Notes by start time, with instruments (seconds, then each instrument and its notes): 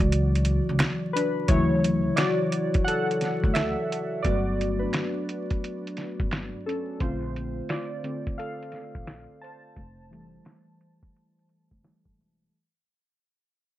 Already playing: synth keys C#3 E3 F#3 F#4 D5
0.00 upright bass C#2
0.12 closed hi-hat
0.35 closed hi-hat
0.45 closed hi-hat
0.69 upright bass C#2
0.79 finger snap, snare, closed hi-hat
1.13 synth keys D4 B4, closed hi-hat
1.48 upright bass D2, synth keys C#3 E3 F#3 E4 C#5, kick, closed hi-hat
1.84 closed hi-hat
2.16 synth keys F#4 D5, finger snap, snare, closed hi-hat
2.52 closed hi-hat
2.74 kick, closed hi-hat
2.84 synth keys A4 F#5, closed hi-hat
3.11 closed hi-hat
3.21 snare, closed hi-hat
3.44 upright bass D2, kick
3.54 synth keys A4 E5, finger snap, snare, closed hi-hat
3.92 closed hi-hat
4.22 upright bass G1, synth keys F#3 A3 B3 F#4 D5, kick, closed hi-hat
4.61 closed hi-hat
4.79 synth keys D4 B4
4.93 finger snap, snare, closed hi-hat
5.29 closed hi-hat
5.50 kick, closed hi-hat
5.64 closed hi-hat
5.87 closed hi-hat
5.97 snare, closed hi-hat
6.20 upright bass G1, kick
6.31 finger snap, snare, closed hi-hat
6.66 synth keys C#4 A4, closed hi-hat
7.00 upright bass A#1, synth keys D3 A3 C4 F4 C5, kick, closed hi-hat
7.36 closed hi-hat
7.69 synth keys F4 D5, snare, closed hi-hat
8.03 synth keys D3 A3 C4, closed hi-hat
8.27 kick, closed hi-hat
8.38 synth keys A4 F5, closed hi-hat
8.63 closed hi-hat
8.72 snare, closed hi-hat
8.95 upright bass A#1, kick
9.07 snare, closed hi-hat
9.41 synth keys C5 A5, closed hi-hat
9.76 upright bass F1, kick, closed hi-hat
10.11 synth keys E3 G3 A3, closed hi-hat
10.45 snare, closed hi-hat
10.81 closed hi-hat
11.03 kick, closed hi-hat
11.16 closed hi-hat
11.39 closed hi-hat
11.49 closed hi-hat
11.71 upright bass F1, kick
11.83 synth keys E3 G3 A3, snare, closed hi-hat
12.05 upright bass G1, kick
12.18 upright bass E1, closed hi-hat